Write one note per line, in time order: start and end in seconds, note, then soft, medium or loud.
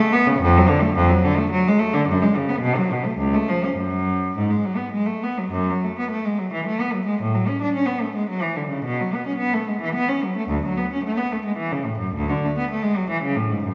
0.00 0.13 A3 medium
0.13 0.27 B3 loud
0.27 0.41 C#3 medium
0.41 0.55 F2 loud
0.57 0.70 F#3 medium
0.69 0.83 D3 medium
0.81 0.96 A3 medium
0.95 1.10 F2 loud
1.09 1.23 F#3 medium
1.24 1.38 D3 medium
1.37 1.51 A3 medium
1.50 1.65 F#3 loud
1.68 1.81 G#3 loud
1.79 1.93 A3 medium
1.93 2.07 D3 medium
2.08 2.21 F#2 loud
2.22 2.35 G#3 medium
2.36 2.49 C#3 medium
2.49 2.62 B3 medium
2.61 2.75 B2 medium
2.76 2.91 F#3 medium
2.92 3.05 B2 medium
3.06 3.20 A3 medium
3.18 3.33 C#2 medium
3.34 3.48 A3 medium
3.49 3.63 F3 medium
3.64 3.78 C#4 medium
3.76 4.34 F#2 medium
4.37 4.51 G#2 medium
4.50 4.65 G#3 medium
4.65 4.79 F#3 medium
4.76 4.92 B3 medium
4.92 5.07 G#3 medium
5.06 5.22 A3 medium
5.23 5.39 B3 medium
5.38 5.53 F#3 medium
5.51 5.67 F#2 medium
5.70 5.84 F#3 medium
5.83 5.97 A3 medium
5.99 6.11 B3 medium
6.10 6.24 A3 medium
6.25 6.38 G#3 medium
6.38 6.52 F#3 medium
6.53 6.66 E3 medium
6.66 6.80 A3 medium
6.80 6.94 B3 medium
6.93 7.07 F#3 medium
7.06 7.20 G#3 medium
7.21 7.35 A2 medium
7.34 7.49 F#3 medium
7.48 7.62 C#4 medium
7.62 7.76 D4 medium
7.74 7.88 C#4 medium
7.86 8.02 B3 medium
8.01 8.16 A3 medium
8.15 8.30 G#3 medium
8.30 8.44 F#3 medium
8.42 8.58 E3 medium
8.55 8.71 D3 medium
8.69 8.85 C#3 medium
8.85 9.00 B2 medium
8.99 9.14 F#3 medium
9.14 9.28 B3 medium
9.27 9.41 C#4 medium
9.38 9.53 B3 medium
9.53 9.68 A3 medium
9.68 9.82 G#3 medium
9.81 9.95 E3 medium
9.95 10.08 B3 medium
10.08 10.22 C#4 medium
10.24 10.36 F#3 medium
10.37 10.49 A3 medium
10.49 10.62 D2 medium
10.66 10.77 F#3 medium
10.77 10.90 B3 medium
10.93 11.04 C#4 medium
11.04 11.16 A3 medium
11.17 11.30 B3 medium
11.32 11.44 A3 medium
11.45 11.57 G#3 medium
11.57 11.70 E3 medium
11.72 11.85 C#3 medium
11.85 11.98 A2 medium
11.99 12.12 F#2 medium
12.14 12.27 D2 medium
12.29 12.42 D3 medium
12.44 12.56 A3 medium
12.58 12.69 B3 medium
12.71 12.82 A3 medium
12.82 12.95 G#3 medium
12.97 13.09 F#3 medium
13.10 13.23 E3 medium
13.23 13.36 C#3 medium
13.36 13.50 A2 medium
13.50 13.64 G#2 medium
13.64 13.74 F#2 medium